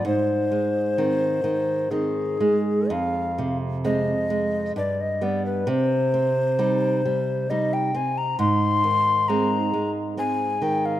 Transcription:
<<
  \new Staff \with { instrumentName = "Recorder" } { \time 3/4 \key aes \lydian \tempo 4 = 66 c''2 aes'4 | f''8. r16 ees''4 d''16 ees''16 d''16 b'16 | c''2 ees''16 g''16 aes''16 bes''16 | c'''4 bes''8. r16 aes''8 g''16 f''16 | }
  \new Staff \with { instrumentName = "Nylon-string guitar" } { \clef bass \time 3/4 \key aes \lydian aes,8 aes8 <ees c'>8 ees8 <ees c'>8 aes8 | f,8 c8 <aes c'>8 aes8 g,8 <g b>8 | c8 c'8 <g ees'>8 g8 <g ees'>8 c'8 | aes,8 ees8 <aes c'>8 aes8 <aes c'>8 ees8 | }
>>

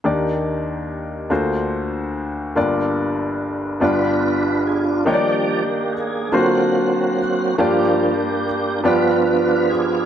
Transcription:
<<
  \new Staff \with { instrumentName = "Grand piano" } { \time 6/8 \key ees \major \tempo 4. = 48 <bes d' ees' g' d''>4. <ais d' eis' fis' c''>4. | <bes d' f' g' d''>4. <b d' f' g' d''>4. | <bes d' ees' g' des'' d''>4 r8 <ais d' eis' fis' c''>4 r8 | <bes d' f' g' d''>4 r8 <b d' f' g' d''>4 r8 | }
  \new Staff \with { instrumentName = "Grand piano" } { \clef bass \time 6/8 \key ees \major <ees, ees>4. <d, d>4. | <g,, g,>4. <g,, g,>4. | ees4. d4. | g,4. g,4. | }
  \new Staff \with { instrumentName = "Tonewheel organ" } { \time 6/8 \key ees \major << { r2. | r4. b'4 aes'8 | g'4 aes'8 fis'4 fis'8 | g'4. b'4 aes'8 | } \\ { r2. | r4. <d' f'>4. | bes4. c'4. | r4. <d' f'>4. | } >> }
  \new Staff \with { instrumentName = "Tonewheel organ" } { \clef bass \time 6/8 \key ees \major r2. | r2. | <f g d''>8 r4 <fis ais>4. | <f bes d'>8 r4 <f b>4. | }
>>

